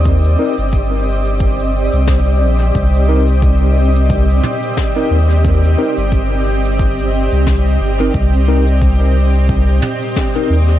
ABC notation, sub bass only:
X:1
M:4/4
L:1/16
Q:"Swing 16ths" 1/4=89
K:Cm
V:1 name="Sub bass" clef=bass
E,,2 z G,,,8 C,,3 B,,,2 | C,,8- C,,2 z4 E,,2- | E,,2 z G,,,8 C,,3 G,,,2 | C,,8- C,,2 z4 E,,2 |]